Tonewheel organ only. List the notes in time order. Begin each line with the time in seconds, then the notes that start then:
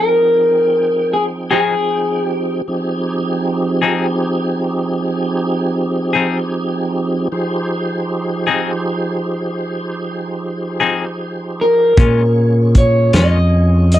Already playing: F3 C4 D#4 G#4 G5
2.68 F3 C4 D#4 G4 G#4
7.32 F3 D#4 G4 G#4 C5
11.97 C#4 F4 G#4 C#5